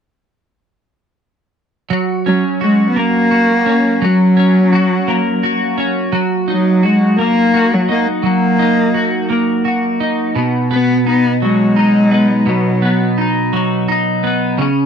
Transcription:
1.90 F#3
2.26 F#3 C#4
2.61 G#3 F#4
2.90 B3
2.96 A#3
3.31 F#4
3.66 C#4
4.02 F#3
4.37 C#4
4.73 F#4
5.08 A#3
5.43 F#4
5.78 C#4
6.12 F#3
6.48 F#3 D#4
6.83 G#3 F#4
7.19 A#3
7.54 F#4
7.74 F#3
7.89 A#3 D#4
8.23 F#3 A#3
8.59 D#4
8.94 F#4
9.30 A#3
9.65 F#4
10.00 D#4
10.36 B2
10.71 B3
11.07 B3 D#4
11.42 F#3 G#3
11.76 D#4
12.11 B3
12.46 B2 F#3
12.82 B3
13.18 D#4
13.53 F#3
13.89 D#4
14.24 B3
14.58 C#3

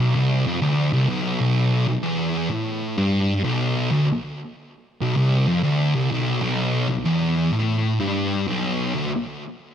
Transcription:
0.00 B1
0.15 C2
0.47 F2
0.62 D2
0.93 C2
1.09 B1
1.40 B1
1.88 B1
2.03 E2
2.50 A2
2.98 G2
3.44 B1
3.91 D2
5.01 B1
5.16 C2
5.48 F2
5.63 D2
5.95 C2
6.11 B1
6.42 B1
6.89 B1
7.05 E2
7.52 A2
8.00 G2
8.48 B1
8.95 D2

